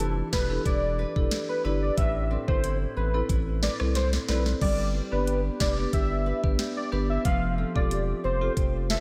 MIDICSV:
0, 0, Header, 1, 6, 480
1, 0, Start_track
1, 0, Key_signature, 0, "minor"
1, 0, Tempo, 659341
1, 1438, Time_signature, 4, 2, 24, 8
1, 6553, End_track
2, 0, Start_track
2, 0, Title_t, "Soft synth lead"
2, 0, Program_c, 0, 80
2, 0, Note_on_c, 0, 69, 86
2, 93, Note_off_c, 0, 69, 0
2, 238, Note_on_c, 0, 71, 88
2, 446, Note_off_c, 0, 71, 0
2, 478, Note_on_c, 0, 74, 97
2, 823, Note_off_c, 0, 74, 0
2, 1083, Note_on_c, 0, 71, 82
2, 1182, Note_off_c, 0, 71, 0
2, 1324, Note_on_c, 0, 74, 76
2, 1423, Note_off_c, 0, 74, 0
2, 1437, Note_on_c, 0, 76, 105
2, 1645, Note_off_c, 0, 76, 0
2, 1805, Note_on_c, 0, 72, 93
2, 2013, Note_off_c, 0, 72, 0
2, 2157, Note_on_c, 0, 71, 82
2, 2366, Note_off_c, 0, 71, 0
2, 2639, Note_on_c, 0, 74, 78
2, 2749, Note_off_c, 0, 74, 0
2, 2878, Note_on_c, 0, 72, 84
2, 2988, Note_off_c, 0, 72, 0
2, 3119, Note_on_c, 0, 71, 72
2, 3229, Note_off_c, 0, 71, 0
2, 3358, Note_on_c, 0, 74, 102
2, 3566, Note_off_c, 0, 74, 0
2, 3726, Note_on_c, 0, 71, 82
2, 3934, Note_off_c, 0, 71, 0
2, 4077, Note_on_c, 0, 74, 90
2, 4286, Note_off_c, 0, 74, 0
2, 4318, Note_on_c, 0, 76, 110
2, 4663, Note_off_c, 0, 76, 0
2, 4924, Note_on_c, 0, 74, 85
2, 5023, Note_off_c, 0, 74, 0
2, 5165, Note_on_c, 0, 76, 82
2, 5263, Note_off_c, 0, 76, 0
2, 5278, Note_on_c, 0, 77, 103
2, 5486, Note_off_c, 0, 77, 0
2, 5645, Note_on_c, 0, 74, 82
2, 5853, Note_off_c, 0, 74, 0
2, 5998, Note_on_c, 0, 72, 88
2, 6206, Note_off_c, 0, 72, 0
2, 6478, Note_on_c, 0, 76, 84
2, 6553, Note_off_c, 0, 76, 0
2, 6553, End_track
3, 0, Start_track
3, 0, Title_t, "Marimba"
3, 0, Program_c, 1, 12
3, 236, Note_on_c, 1, 67, 80
3, 288, Note_off_c, 1, 67, 0
3, 363, Note_on_c, 1, 62, 71
3, 364, Note_on_c, 1, 64, 65
3, 365, Note_on_c, 1, 67, 66
3, 367, Note_on_c, 1, 69, 79
3, 455, Note_off_c, 1, 62, 0
3, 455, Note_off_c, 1, 64, 0
3, 455, Note_off_c, 1, 67, 0
3, 456, Note_off_c, 1, 69, 0
3, 717, Note_on_c, 1, 67, 74
3, 720, Note_on_c, 1, 71, 82
3, 769, Note_off_c, 1, 67, 0
3, 770, Note_off_c, 1, 71, 0
3, 845, Note_on_c, 1, 62, 64
3, 847, Note_on_c, 1, 64, 60
3, 847, Note_on_c, 1, 67, 62
3, 848, Note_on_c, 1, 69, 75
3, 936, Note_off_c, 1, 62, 0
3, 936, Note_off_c, 1, 64, 0
3, 936, Note_off_c, 1, 67, 0
3, 937, Note_off_c, 1, 69, 0
3, 1198, Note_on_c, 1, 62, 79
3, 1199, Note_on_c, 1, 64, 73
3, 1201, Note_on_c, 1, 67, 72
3, 1202, Note_on_c, 1, 74, 84
3, 1300, Note_off_c, 1, 62, 0
3, 1300, Note_off_c, 1, 64, 0
3, 1301, Note_off_c, 1, 67, 0
3, 1302, Note_off_c, 1, 74, 0
3, 1678, Note_on_c, 1, 69, 80
3, 1682, Note_on_c, 1, 71, 86
3, 1729, Note_off_c, 1, 69, 0
3, 1731, Note_off_c, 1, 71, 0
3, 1805, Note_on_c, 1, 60, 70
3, 1806, Note_on_c, 1, 64, 64
3, 1807, Note_on_c, 1, 69, 65
3, 1809, Note_on_c, 1, 71, 77
3, 1895, Note_off_c, 1, 60, 0
3, 1896, Note_off_c, 1, 64, 0
3, 1897, Note_off_c, 1, 69, 0
3, 1898, Note_off_c, 1, 71, 0
3, 2159, Note_on_c, 1, 69, 76
3, 2162, Note_on_c, 1, 71, 86
3, 2209, Note_off_c, 1, 69, 0
3, 2211, Note_off_c, 1, 71, 0
3, 2285, Note_on_c, 1, 60, 70
3, 2287, Note_on_c, 1, 64, 64
3, 2288, Note_on_c, 1, 69, 65
3, 2290, Note_on_c, 1, 71, 79
3, 2376, Note_off_c, 1, 60, 0
3, 2376, Note_off_c, 1, 64, 0
3, 2377, Note_off_c, 1, 69, 0
3, 2378, Note_off_c, 1, 71, 0
3, 2639, Note_on_c, 1, 69, 74
3, 2642, Note_on_c, 1, 71, 82
3, 2689, Note_off_c, 1, 69, 0
3, 2691, Note_off_c, 1, 71, 0
3, 2767, Note_on_c, 1, 60, 67
3, 2768, Note_on_c, 1, 64, 58
3, 2769, Note_on_c, 1, 69, 61
3, 2771, Note_on_c, 1, 71, 75
3, 2856, Note_off_c, 1, 60, 0
3, 2857, Note_off_c, 1, 64, 0
3, 2857, Note_off_c, 1, 69, 0
3, 2858, Note_off_c, 1, 71, 0
3, 3118, Note_on_c, 1, 60, 75
3, 3119, Note_on_c, 1, 64, 72
3, 3120, Note_on_c, 1, 69, 70
3, 3120, Note_on_c, 1, 74, 84
3, 3220, Note_off_c, 1, 60, 0
3, 3220, Note_off_c, 1, 64, 0
3, 3221, Note_off_c, 1, 69, 0
3, 3221, Note_off_c, 1, 74, 0
3, 3598, Note_on_c, 1, 67, 78
3, 3602, Note_on_c, 1, 71, 89
3, 3649, Note_off_c, 1, 67, 0
3, 3651, Note_off_c, 1, 71, 0
3, 3725, Note_on_c, 1, 59, 71
3, 3726, Note_on_c, 1, 62, 65
3, 3728, Note_on_c, 1, 67, 64
3, 3729, Note_on_c, 1, 74, 75
3, 3815, Note_off_c, 1, 59, 0
3, 3816, Note_off_c, 1, 62, 0
3, 3817, Note_off_c, 1, 67, 0
3, 3817, Note_off_c, 1, 74, 0
3, 4078, Note_on_c, 1, 67, 77
3, 4082, Note_on_c, 1, 71, 90
3, 4129, Note_off_c, 1, 67, 0
3, 4131, Note_off_c, 1, 71, 0
3, 4206, Note_on_c, 1, 59, 69
3, 4207, Note_on_c, 1, 62, 64
3, 4209, Note_on_c, 1, 67, 66
3, 4209, Note_on_c, 1, 71, 78
3, 4296, Note_off_c, 1, 59, 0
3, 4296, Note_off_c, 1, 62, 0
3, 4297, Note_off_c, 1, 67, 0
3, 4297, Note_off_c, 1, 71, 0
3, 4556, Note_on_c, 1, 67, 72
3, 4559, Note_on_c, 1, 71, 85
3, 4608, Note_off_c, 1, 67, 0
3, 4610, Note_off_c, 1, 71, 0
3, 4685, Note_on_c, 1, 59, 66
3, 4686, Note_on_c, 1, 62, 60
3, 4688, Note_on_c, 1, 67, 59
3, 4688, Note_on_c, 1, 71, 70
3, 4775, Note_off_c, 1, 59, 0
3, 4776, Note_off_c, 1, 62, 0
3, 4777, Note_off_c, 1, 67, 0
3, 4777, Note_off_c, 1, 71, 0
3, 5037, Note_on_c, 1, 59, 77
3, 5038, Note_on_c, 1, 62, 68
3, 5039, Note_on_c, 1, 67, 73
3, 5040, Note_on_c, 1, 71, 88
3, 5139, Note_off_c, 1, 59, 0
3, 5140, Note_off_c, 1, 62, 0
3, 5140, Note_off_c, 1, 67, 0
3, 5141, Note_off_c, 1, 71, 0
3, 5516, Note_on_c, 1, 67, 77
3, 5520, Note_on_c, 1, 69, 87
3, 5568, Note_off_c, 1, 67, 0
3, 5570, Note_off_c, 1, 69, 0
3, 5644, Note_on_c, 1, 60, 71
3, 5646, Note_on_c, 1, 65, 64
3, 5646, Note_on_c, 1, 67, 67
3, 5648, Note_on_c, 1, 69, 81
3, 5735, Note_off_c, 1, 60, 0
3, 5736, Note_off_c, 1, 65, 0
3, 5736, Note_off_c, 1, 67, 0
3, 5737, Note_off_c, 1, 69, 0
3, 5997, Note_on_c, 1, 67, 76
3, 6000, Note_on_c, 1, 72, 85
3, 6048, Note_off_c, 1, 67, 0
3, 6050, Note_off_c, 1, 72, 0
3, 6124, Note_on_c, 1, 60, 70
3, 6124, Note_on_c, 1, 65, 66
3, 6126, Note_on_c, 1, 67, 66
3, 6127, Note_on_c, 1, 69, 78
3, 6215, Note_off_c, 1, 60, 0
3, 6215, Note_off_c, 1, 65, 0
3, 6216, Note_off_c, 1, 67, 0
3, 6216, Note_off_c, 1, 69, 0
3, 6477, Note_on_c, 1, 67, 73
3, 6480, Note_on_c, 1, 71, 83
3, 6529, Note_off_c, 1, 67, 0
3, 6530, Note_off_c, 1, 71, 0
3, 6553, End_track
4, 0, Start_track
4, 0, Title_t, "Nylon-string guitar"
4, 0, Program_c, 2, 24
4, 0, Note_on_c, 2, 52, 85
4, 0, Note_on_c, 2, 62, 65
4, 0, Note_on_c, 2, 64, 63
4, 230, Note_off_c, 2, 62, 0
4, 239, Note_on_c, 2, 62, 65
4, 476, Note_off_c, 2, 64, 0
4, 479, Note_on_c, 2, 64, 68
4, 719, Note_on_c, 2, 71, 70
4, 957, Note_off_c, 2, 64, 0
4, 959, Note_on_c, 2, 64, 67
4, 1196, Note_off_c, 2, 71, 0
4, 1199, Note_on_c, 2, 71, 74
4, 1439, Note_on_c, 2, 45, 84
4, 1489, Note_off_c, 2, 62, 0
4, 1679, Note_on_c, 2, 60, 65
4, 1701, Note_off_c, 2, 71, 0
4, 1917, Note_off_c, 2, 64, 0
4, 1920, Note_on_c, 2, 64, 65
4, 2067, Note_off_c, 2, 52, 0
4, 2151, Note_off_c, 2, 60, 0
4, 2160, Note_on_c, 2, 60, 63
4, 2391, Note_off_c, 2, 64, 0
4, 2400, Note_on_c, 2, 64, 65
4, 2639, Note_on_c, 2, 71, 69
4, 2870, Note_off_c, 2, 64, 0
4, 2879, Note_on_c, 2, 64, 65
4, 3116, Note_off_c, 2, 71, 0
4, 3119, Note_on_c, 2, 71, 72
4, 3359, Note_off_c, 2, 45, 0
4, 3359, Note_on_c, 2, 55, 84
4, 3409, Note_off_c, 2, 64, 0
4, 3410, Note_off_c, 2, 60, 0
4, 3599, Note_on_c, 2, 62, 65
4, 3839, Note_on_c, 2, 67, 67
4, 4070, Note_off_c, 2, 62, 0
4, 4079, Note_on_c, 2, 62, 65
4, 4316, Note_off_c, 2, 67, 0
4, 4319, Note_on_c, 2, 67, 67
4, 4555, Note_off_c, 2, 71, 0
4, 4558, Note_on_c, 2, 71, 73
4, 4796, Note_off_c, 2, 67, 0
4, 4799, Note_on_c, 2, 67, 65
4, 5030, Note_off_c, 2, 71, 0
4, 5039, Note_on_c, 2, 71, 73
4, 5275, Note_off_c, 2, 55, 0
4, 5278, Note_on_c, 2, 53, 86
4, 5329, Note_off_c, 2, 62, 0
4, 5329, Note_off_c, 2, 71, 0
4, 5519, Note_on_c, 2, 60, 66
4, 5756, Note_off_c, 2, 67, 0
4, 5759, Note_on_c, 2, 67, 69
4, 5990, Note_off_c, 2, 60, 0
4, 5999, Note_on_c, 2, 60, 67
4, 6235, Note_off_c, 2, 67, 0
4, 6238, Note_on_c, 2, 67, 66
4, 6479, Note_on_c, 2, 69, 70
4, 6553, Note_off_c, 2, 53, 0
4, 6553, Note_off_c, 2, 60, 0
4, 6553, Note_off_c, 2, 67, 0
4, 6553, Note_off_c, 2, 69, 0
4, 6553, End_track
5, 0, Start_track
5, 0, Title_t, "Sub bass"
5, 0, Program_c, 3, 38
5, 0, Note_on_c, 3, 29, 93
5, 161, Note_off_c, 3, 29, 0
5, 238, Note_on_c, 3, 28, 92
5, 426, Note_off_c, 3, 28, 0
5, 476, Note_on_c, 3, 28, 113
5, 764, Note_off_c, 3, 28, 0
5, 844, Note_on_c, 3, 28, 86
5, 933, Note_off_c, 3, 28, 0
5, 1198, Note_on_c, 3, 31, 91
5, 1385, Note_off_c, 3, 31, 0
5, 1438, Note_on_c, 3, 33, 109
5, 1725, Note_off_c, 3, 33, 0
5, 1807, Note_on_c, 3, 31, 103
5, 2082, Note_off_c, 3, 31, 0
5, 2158, Note_on_c, 3, 33, 94
5, 2346, Note_off_c, 3, 33, 0
5, 2397, Note_on_c, 3, 33, 99
5, 2685, Note_off_c, 3, 33, 0
5, 2768, Note_on_c, 3, 36, 85
5, 3043, Note_off_c, 3, 36, 0
5, 3119, Note_on_c, 3, 35, 97
5, 3307, Note_off_c, 3, 35, 0
5, 3359, Note_on_c, 3, 31, 110
5, 3646, Note_off_c, 3, 31, 0
5, 3726, Note_on_c, 3, 31, 96
5, 4002, Note_off_c, 3, 31, 0
5, 4079, Note_on_c, 3, 29, 91
5, 4266, Note_off_c, 3, 29, 0
5, 4317, Note_on_c, 3, 31, 99
5, 4605, Note_off_c, 3, 31, 0
5, 4686, Note_on_c, 3, 31, 83
5, 4774, Note_off_c, 3, 31, 0
5, 5039, Note_on_c, 3, 31, 97
5, 5226, Note_off_c, 3, 31, 0
5, 5278, Note_on_c, 3, 29, 109
5, 5565, Note_off_c, 3, 29, 0
5, 5647, Note_on_c, 3, 28, 97
5, 5922, Note_off_c, 3, 28, 0
5, 5998, Note_on_c, 3, 29, 90
5, 6186, Note_off_c, 3, 29, 0
5, 6238, Note_on_c, 3, 29, 95
5, 6525, Note_off_c, 3, 29, 0
5, 6553, End_track
6, 0, Start_track
6, 0, Title_t, "Drums"
6, 0, Note_on_c, 9, 42, 72
6, 73, Note_off_c, 9, 42, 0
6, 238, Note_on_c, 9, 36, 102
6, 238, Note_on_c, 9, 38, 121
6, 311, Note_off_c, 9, 36, 0
6, 311, Note_off_c, 9, 38, 0
6, 477, Note_on_c, 9, 36, 101
6, 478, Note_on_c, 9, 42, 69
6, 549, Note_off_c, 9, 36, 0
6, 551, Note_off_c, 9, 42, 0
6, 845, Note_on_c, 9, 36, 99
6, 918, Note_off_c, 9, 36, 0
6, 957, Note_on_c, 9, 38, 119
6, 957, Note_on_c, 9, 42, 98
6, 1029, Note_off_c, 9, 42, 0
6, 1030, Note_off_c, 9, 38, 0
6, 1438, Note_on_c, 9, 36, 119
6, 1438, Note_on_c, 9, 42, 82
6, 1511, Note_off_c, 9, 36, 0
6, 1511, Note_off_c, 9, 42, 0
6, 1806, Note_on_c, 9, 36, 105
6, 1879, Note_off_c, 9, 36, 0
6, 1920, Note_on_c, 9, 42, 73
6, 1993, Note_off_c, 9, 42, 0
6, 2398, Note_on_c, 9, 36, 105
6, 2399, Note_on_c, 9, 42, 73
6, 2470, Note_off_c, 9, 36, 0
6, 2472, Note_off_c, 9, 42, 0
6, 2640, Note_on_c, 9, 38, 117
6, 2713, Note_off_c, 9, 38, 0
6, 2765, Note_on_c, 9, 37, 103
6, 2838, Note_off_c, 9, 37, 0
6, 2877, Note_on_c, 9, 42, 98
6, 2879, Note_on_c, 9, 38, 63
6, 2950, Note_off_c, 9, 42, 0
6, 2951, Note_off_c, 9, 38, 0
6, 3007, Note_on_c, 9, 38, 70
6, 3080, Note_off_c, 9, 38, 0
6, 3120, Note_on_c, 9, 38, 91
6, 3192, Note_off_c, 9, 38, 0
6, 3247, Note_on_c, 9, 38, 91
6, 3320, Note_off_c, 9, 38, 0
6, 3359, Note_on_c, 9, 36, 114
6, 3359, Note_on_c, 9, 49, 87
6, 3432, Note_off_c, 9, 36, 0
6, 3432, Note_off_c, 9, 49, 0
6, 3840, Note_on_c, 9, 42, 69
6, 3912, Note_off_c, 9, 42, 0
6, 4078, Note_on_c, 9, 38, 123
6, 4079, Note_on_c, 9, 36, 107
6, 4151, Note_off_c, 9, 38, 0
6, 4152, Note_off_c, 9, 36, 0
6, 4317, Note_on_c, 9, 36, 105
6, 4318, Note_on_c, 9, 42, 70
6, 4390, Note_off_c, 9, 36, 0
6, 4391, Note_off_c, 9, 42, 0
6, 4685, Note_on_c, 9, 36, 106
6, 4758, Note_off_c, 9, 36, 0
6, 4797, Note_on_c, 9, 38, 120
6, 4797, Note_on_c, 9, 42, 99
6, 4870, Note_off_c, 9, 38, 0
6, 4870, Note_off_c, 9, 42, 0
6, 5278, Note_on_c, 9, 36, 119
6, 5278, Note_on_c, 9, 42, 85
6, 5351, Note_off_c, 9, 36, 0
6, 5351, Note_off_c, 9, 42, 0
6, 5647, Note_on_c, 9, 36, 104
6, 5719, Note_off_c, 9, 36, 0
6, 5760, Note_on_c, 9, 42, 70
6, 5833, Note_off_c, 9, 42, 0
6, 6237, Note_on_c, 9, 36, 108
6, 6238, Note_on_c, 9, 42, 69
6, 6310, Note_off_c, 9, 36, 0
6, 6311, Note_off_c, 9, 42, 0
6, 6479, Note_on_c, 9, 38, 117
6, 6552, Note_off_c, 9, 38, 0
6, 6553, End_track
0, 0, End_of_file